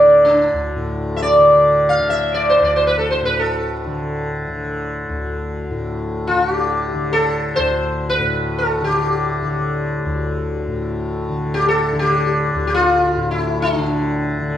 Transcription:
0, 0, Header, 1, 3, 480
1, 0, Start_track
1, 0, Tempo, 500000
1, 13991, End_track
2, 0, Start_track
2, 0, Title_t, "Sitar"
2, 0, Program_c, 0, 104
2, 0, Note_on_c, 0, 74, 93
2, 238, Note_on_c, 0, 62, 65
2, 262, Note_off_c, 0, 74, 0
2, 578, Note_off_c, 0, 62, 0
2, 1118, Note_on_c, 0, 76, 57
2, 1171, Note_off_c, 0, 76, 0
2, 1175, Note_on_c, 0, 74, 80
2, 1810, Note_off_c, 0, 74, 0
2, 1814, Note_on_c, 0, 77, 78
2, 2008, Note_off_c, 0, 77, 0
2, 2012, Note_on_c, 0, 76, 75
2, 2246, Note_off_c, 0, 76, 0
2, 2248, Note_on_c, 0, 74, 72
2, 2391, Note_off_c, 0, 74, 0
2, 2395, Note_on_c, 0, 72, 74
2, 2532, Note_off_c, 0, 72, 0
2, 2537, Note_on_c, 0, 74, 66
2, 2640, Note_off_c, 0, 74, 0
2, 2649, Note_on_c, 0, 72, 67
2, 2750, Note_off_c, 0, 72, 0
2, 2754, Note_on_c, 0, 71, 69
2, 2861, Note_off_c, 0, 71, 0
2, 2865, Note_on_c, 0, 69, 60
2, 2978, Note_off_c, 0, 69, 0
2, 2981, Note_on_c, 0, 72, 70
2, 3116, Note_off_c, 0, 72, 0
2, 3123, Note_on_c, 0, 71, 76
2, 3253, Note_off_c, 0, 71, 0
2, 3257, Note_on_c, 0, 69, 56
2, 5114, Note_off_c, 0, 69, 0
2, 6023, Note_on_c, 0, 65, 68
2, 6167, Note_off_c, 0, 65, 0
2, 6167, Note_on_c, 0, 66, 68
2, 6272, Note_off_c, 0, 66, 0
2, 6272, Note_on_c, 0, 67, 68
2, 6838, Note_off_c, 0, 67, 0
2, 6842, Note_on_c, 0, 69, 87
2, 7255, Note_on_c, 0, 72, 91
2, 7277, Note_off_c, 0, 69, 0
2, 7767, Note_off_c, 0, 72, 0
2, 7771, Note_on_c, 0, 71, 92
2, 8241, Note_on_c, 0, 69, 63
2, 8255, Note_off_c, 0, 71, 0
2, 8485, Note_off_c, 0, 69, 0
2, 8488, Note_on_c, 0, 67, 62
2, 10381, Note_off_c, 0, 67, 0
2, 11079, Note_on_c, 0, 67, 85
2, 11213, Note_off_c, 0, 67, 0
2, 11217, Note_on_c, 0, 69, 83
2, 11509, Note_off_c, 0, 69, 0
2, 11513, Note_on_c, 0, 67, 80
2, 12124, Note_off_c, 0, 67, 0
2, 12165, Note_on_c, 0, 67, 67
2, 12230, Note_off_c, 0, 67, 0
2, 12234, Note_on_c, 0, 65, 75
2, 12772, Note_off_c, 0, 65, 0
2, 12776, Note_on_c, 0, 64, 63
2, 13067, Note_off_c, 0, 64, 0
2, 13076, Note_on_c, 0, 62, 73
2, 13991, Note_off_c, 0, 62, 0
2, 13991, End_track
3, 0, Start_track
3, 0, Title_t, "Tanpura"
3, 0, Program_c, 1, 104
3, 0, Note_on_c, 1, 38, 53
3, 0, Note_on_c, 1, 45, 61
3, 0, Note_on_c, 1, 50, 62
3, 506, Note_off_c, 1, 38, 0
3, 510, Note_on_c, 1, 38, 63
3, 728, Note_off_c, 1, 45, 0
3, 731, Note_on_c, 1, 45, 58
3, 1315, Note_off_c, 1, 50, 0
3, 1315, Note_on_c, 1, 50, 49
3, 1915, Note_off_c, 1, 50, 0
3, 1915, Note_on_c, 1, 50, 50
3, 2501, Note_off_c, 1, 38, 0
3, 2504, Note_on_c, 1, 38, 58
3, 3088, Note_off_c, 1, 45, 0
3, 3092, Note_on_c, 1, 45, 47
3, 3700, Note_off_c, 1, 50, 0
3, 3700, Note_on_c, 1, 50, 54
3, 4294, Note_off_c, 1, 50, 0
3, 4294, Note_on_c, 1, 50, 55
3, 4884, Note_off_c, 1, 38, 0
3, 4888, Note_on_c, 1, 38, 55
3, 5474, Note_off_c, 1, 45, 0
3, 5477, Note_on_c, 1, 45, 53
3, 6075, Note_off_c, 1, 50, 0
3, 6075, Note_on_c, 1, 50, 49
3, 6663, Note_off_c, 1, 50, 0
3, 6663, Note_on_c, 1, 50, 57
3, 7272, Note_off_c, 1, 38, 0
3, 7276, Note_on_c, 1, 38, 51
3, 7860, Note_off_c, 1, 45, 0
3, 7864, Note_on_c, 1, 45, 59
3, 8455, Note_off_c, 1, 50, 0
3, 8455, Note_on_c, 1, 50, 57
3, 9046, Note_off_c, 1, 50, 0
3, 9046, Note_on_c, 1, 50, 53
3, 9645, Note_off_c, 1, 38, 0
3, 9648, Note_on_c, 1, 38, 58
3, 10246, Note_off_c, 1, 45, 0
3, 10249, Note_on_c, 1, 45, 51
3, 10837, Note_off_c, 1, 50, 0
3, 10837, Note_on_c, 1, 50, 49
3, 11449, Note_off_c, 1, 50, 0
3, 11449, Note_on_c, 1, 50, 63
3, 12039, Note_off_c, 1, 38, 0
3, 12043, Note_on_c, 1, 38, 51
3, 12633, Note_off_c, 1, 45, 0
3, 12636, Note_on_c, 1, 45, 61
3, 13219, Note_off_c, 1, 50, 0
3, 13219, Note_on_c, 1, 50, 53
3, 13812, Note_off_c, 1, 50, 0
3, 13812, Note_on_c, 1, 50, 60
3, 13991, Note_off_c, 1, 38, 0
3, 13991, Note_off_c, 1, 45, 0
3, 13991, Note_off_c, 1, 50, 0
3, 13991, End_track
0, 0, End_of_file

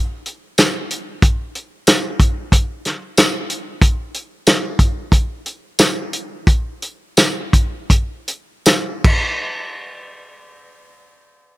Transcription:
0, 0, Header, 1, 2, 480
1, 0, Start_track
1, 0, Tempo, 647249
1, 908, Time_signature, 4, 2, 24, 8
1, 3307, Tempo, 669643
1, 4747, Tempo, 714286
1, 5707, Tempo, 753769
1, 6187, Tempo, 802139
1, 7937, End_track
2, 0, Start_track
2, 0, Title_t, "Drums"
2, 191, Note_on_c, 9, 42, 55
2, 265, Note_off_c, 9, 42, 0
2, 429, Note_on_c, 9, 42, 81
2, 429, Note_on_c, 9, 54, 97
2, 435, Note_on_c, 9, 38, 96
2, 504, Note_off_c, 9, 42, 0
2, 504, Note_off_c, 9, 54, 0
2, 510, Note_off_c, 9, 38, 0
2, 671, Note_on_c, 9, 42, 64
2, 746, Note_off_c, 9, 42, 0
2, 907, Note_on_c, 9, 42, 87
2, 908, Note_on_c, 9, 36, 113
2, 982, Note_off_c, 9, 36, 0
2, 982, Note_off_c, 9, 42, 0
2, 1150, Note_on_c, 9, 42, 57
2, 1224, Note_off_c, 9, 42, 0
2, 1387, Note_on_c, 9, 42, 85
2, 1387, Note_on_c, 9, 54, 97
2, 1393, Note_on_c, 9, 38, 104
2, 1461, Note_off_c, 9, 42, 0
2, 1461, Note_off_c, 9, 54, 0
2, 1467, Note_off_c, 9, 38, 0
2, 1628, Note_on_c, 9, 36, 89
2, 1631, Note_on_c, 9, 42, 65
2, 1702, Note_off_c, 9, 36, 0
2, 1705, Note_off_c, 9, 42, 0
2, 1869, Note_on_c, 9, 36, 76
2, 1872, Note_on_c, 9, 42, 85
2, 1944, Note_off_c, 9, 36, 0
2, 1947, Note_off_c, 9, 42, 0
2, 2114, Note_on_c, 9, 42, 60
2, 2120, Note_on_c, 9, 38, 31
2, 2188, Note_off_c, 9, 42, 0
2, 2194, Note_off_c, 9, 38, 0
2, 2354, Note_on_c, 9, 42, 82
2, 2354, Note_on_c, 9, 54, 99
2, 2360, Note_on_c, 9, 38, 108
2, 2428, Note_off_c, 9, 42, 0
2, 2428, Note_off_c, 9, 54, 0
2, 2434, Note_off_c, 9, 38, 0
2, 2594, Note_on_c, 9, 42, 67
2, 2668, Note_off_c, 9, 42, 0
2, 2829, Note_on_c, 9, 36, 104
2, 2831, Note_on_c, 9, 42, 83
2, 2904, Note_off_c, 9, 36, 0
2, 2906, Note_off_c, 9, 42, 0
2, 3073, Note_on_c, 9, 42, 50
2, 3147, Note_off_c, 9, 42, 0
2, 3312, Note_on_c, 9, 42, 82
2, 3312, Note_on_c, 9, 54, 95
2, 3318, Note_on_c, 9, 38, 113
2, 3384, Note_off_c, 9, 42, 0
2, 3384, Note_off_c, 9, 54, 0
2, 3390, Note_off_c, 9, 38, 0
2, 3544, Note_on_c, 9, 36, 83
2, 3545, Note_on_c, 9, 42, 60
2, 3616, Note_off_c, 9, 36, 0
2, 3617, Note_off_c, 9, 42, 0
2, 3780, Note_on_c, 9, 36, 81
2, 3783, Note_on_c, 9, 42, 71
2, 3851, Note_off_c, 9, 36, 0
2, 3855, Note_off_c, 9, 42, 0
2, 4022, Note_on_c, 9, 42, 53
2, 4094, Note_off_c, 9, 42, 0
2, 4260, Note_on_c, 9, 42, 77
2, 4260, Note_on_c, 9, 54, 118
2, 4265, Note_on_c, 9, 38, 106
2, 4331, Note_off_c, 9, 42, 0
2, 4331, Note_off_c, 9, 54, 0
2, 4337, Note_off_c, 9, 38, 0
2, 4505, Note_on_c, 9, 42, 64
2, 4576, Note_off_c, 9, 42, 0
2, 4748, Note_on_c, 9, 36, 107
2, 4751, Note_on_c, 9, 42, 72
2, 4815, Note_off_c, 9, 36, 0
2, 4818, Note_off_c, 9, 42, 0
2, 4984, Note_on_c, 9, 42, 54
2, 5051, Note_off_c, 9, 42, 0
2, 5219, Note_on_c, 9, 42, 81
2, 5219, Note_on_c, 9, 54, 109
2, 5224, Note_on_c, 9, 38, 97
2, 5286, Note_off_c, 9, 42, 0
2, 5286, Note_off_c, 9, 54, 0
2, 5291, Note_off_c, 9, 38, 0
2, 5462, Note_on_c, 9, 36, 82
2, 5465, Note_on_c, 9, 42, 61
2, 5530, Note_off_c, 9, 36, 0
2, 5532, Note_off_c, 9, 42, 0
2, 5709, Note_on_c, 9, 36, 78
2, 5710, Note_on_c, 9, 42, 86
2, 5772, Note_off_c, 9, 36, 0
2, 5774, Note_off_c, 9, 42, 0
2, 5949, Note_on_c, 9, 42, 63
2, 6012, Note_off_c, 9, 42, 0
2, 6191, Note_on_c, 9, 42, 82
2, 6191, Note_on_c, 9, 54, 111
2, 6196, Note_on_c, 9, 38, 99
2, 6251, Note_off_c, 9, 42, 0
2, 6251, Note_off_c, 9, 54, 0
2, 6256, Note_off_c, 9, 38, 0
2, 6423, Note_on_c, 9, 36, 118
2, 6423, Note_on_c, 9, 49, 90
2, 6482, Note_off_c, 9, 49, 0
2, 6483, Note_off_c, 9, 36, 0
2, 7937, End_track
0, 0, End_of_file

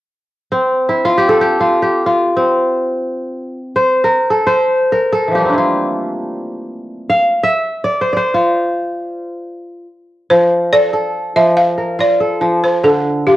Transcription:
0, 0, Header, 1, 3, 480
1, 0, Start_track
1, 0, Key_signature, -1, "major"
1, 0, Tempo, 500000
1, 12831, End_track
2, 0, Start_track
2, 0, Title_t, "Balafon"
2, 0, Program_c, 0, 12
2, 9891, Note_on_c, 0, 72, 82
2, 10298, Note_on_c, 0, 74, 87
2, 10310, Note_off_c, 0, 72, 0
2, 10907, Note_on_c, 0, 76, 82
2, 10925, Note_off_c, 0, 74, 0
2, 11106, Note_on_c, 0, 77, 79
2, 11116, Note_off_c, 0, 76, 0
2, 11525, Note_off_c, 0, 77, 0
2, 11525, Note_on_c, 0, 74, 83
2, 12089, Note_off_c, 0, 74, 0
2, 12130, Note_on_c, 0, 72, 76
2, 12327, Note_on_c, 0, 69, 78
2, 12335, Note_off_c, 0, 72, 0
2, 12736, Note_on_c, 0, 67, 70
2, 12744, Note_off_c, 0, 69, 0
2, 12831, Note_off_c, 0, 67, 0
2, 12831, End_track
3, 0, Start_track
3, 0, Title_t, "Kora"
3, 0, Program_c, 1, 46
3, 495, Note_on_c, 1, 60, 65
3, 852, Note_on_c, 1, 64, 65
3, 1006, Note_on_c, 1, 65, 86
3, 1064, Note_off_c, 1, 64, 0
3, 1129, Note_on_c, 1, 67, 82
3, 1236, Note_on_c, 1, 69, 79
3, 1350, Note_off_c, 1, 67, 0
3, 1354, Note_on_c, 1, 67, 76
3, 1537, Note_off_c, 1, 65, 0
3, 1541, Note_on_c, 1, 65, 73
3, 1747, Note_off_c, 1, 67, 0
3, 1750, Note_on_c, 1, 67, 69
3, 1976, Note_off_c, 1, 65, 0
3, 1980, Note_on_c, 1, 65, 66
3, 2223, Note_off_c, 1, 60, 0
3, 2272, Note_on_c, 1, 60, 58
3, 2501, Note_off_c, 1, 69, 0
3, 3106, Note_off_c, 1, 67, 0
3, 3433, Note_off_c, 1, 65, 0
3, 3610, Note_on_c, 1, 72, 84
3, 3880, Note_on_c, 1, 70, 73
3, 4000, Note_off_c, 1, 60, 0
3, 4131, Note_on_c, 1, 69, 71
3, 4189, Note_off_c, 1, 70, 0
3, 4285, Note_off_c, 1, 72, 0
3, 4288, Note_on_c, 1, 72, 85
3, 4725, Note_on_c, 1, 70, 65
3, 4783, Note_off_c, 1, 69, 0
3, 4921, Note_on_c, 1, 69, 70
3, 4978, Note_off_c, 1, 70, 0
3, 5068, Note_on_c, 1, 52, 27
3, 5103, Note_on_c, 1, 53, 29
3, 5133, Note_on_c, 1, 55, 29
3, 5136, Note_on_c, 1, 67, 59
3, 5173, Note_on_c, 1, 57, 32
3, 5205, Note_on_c, 1, 58, 37
3, 5235, Note_on_c, 1, 60, 40
3, 5263, Note_off_c, 1, 69, 0
3, 5275, Note_on_c, 1, 62, 42
3, 5309, Note_on_c, 1, 64, 44
3, 5354, Note_on_c, 1, 65, 65
3, 5429, Note_off_c, 1, 72, 0
3, 6492, Note_off_c, 1, 67, 0
3, 6807, Note_off_c, 1, 65, 0
3, 6811, Note_on_c, 1, 77, 82
3, 6869, Note_off_c, 1, 64, 0
3, 6888, Note_off_c, 1, 62, 0
3, 6963, Note_off_c, 1, 60, 0
3, 7057, Note_off_c, 1, 58, 0
3, 7090, Note_off_c, 1, 57, 0
3, 7137, Note_on_c, 1, 76, 84
3, 7194, Note_off_c, 1, 77, 0
3, 7314, Note_off_c, 1, 52, 0
3, 7349, Note_off_c, 1, 53, 0
3, 7380, Note_off_c, 1, 55, 0
3, 7528, Note_on_c, 1, 74, 74
3, 7693, Note_on_c, 1, 72, 74
3, 7800, Note_off_c, 1, 74, 0
3, 7803, Note_on_c, 1, 74, 58
3, 7837, Note_off_c, 1, 72, 0
3, 7841, Note_on_c, 1, 72, 72
3, 8008, Note_on_c, 1, 65, 60
3, 8066, Note_off_c, 1, 76, 0
3, 8867, Note_off_c, 1, 74, 0
3, 8981, Note_off_c, 1, 72, 0
3, 9461, Note_off_c, 1, 65, 0
3, 9893, Note_on_c, 1, 53, 64
3, 10298, Note_on_c, 1, 69, 60
3, 10491, Note_off_c, 1, 69, 0
3, 10495, Note_on_c, 1, 69, 69
3, 10894, Note_off_c, 1, 53, 0
3, 10905, Note_on_c, 1, 53, 70
3, 11306, Note_on_c, 1, 70, 57
3, 11363, Note_off_c, 1, 69, 0
3, 11509, Note_on_c, 1, 65, 66
3, 11714, Note_on_c, 1, 69, 59
3, 11902, Note_off_c, 1, 53, 0
3, 11913, Note_on_c, 1, 53, 68
3, 12321, Note_on_c, 1, 50, 70
3, 12373, Note_off_c, 1, 53, 0
3, 12528, Note_off_c, 1, 70, 0
3, 12734, Note_off_c, 1, 65, 0
3, 12738, Note_on_c, 1, 65, 66
3, 12831, Note_off_c, 1, 50, 0
3, 12831, Note_off_c, 1, 65, 0
3, 12831, Note_off_c, 1, 69, 0
3, 12831, End_track
0, 0, End_of_file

